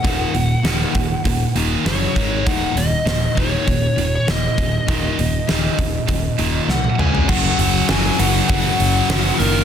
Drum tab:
CC |----------------|----------------|----------------|x---------------|
HH |o-o-o-o-o-o-o-o-|o-o-o-o-o-o-o-o-|o-o-o-o-o-o-----|--o-o-o-o-o-o-o-|
SD |----o-------o---|--o-o-------o---|----o-------o---|----o-------o---|
T1 |----------------|----------------|-------------o--|----------------|
T2 |----------------|----------------|--------------o-|----------------|
FT |----------------|----------------|---------------o|----------------|
BD |o-----o-o-----o-|o-----o-o-----o-|o-----o-o-------|o-------o-------|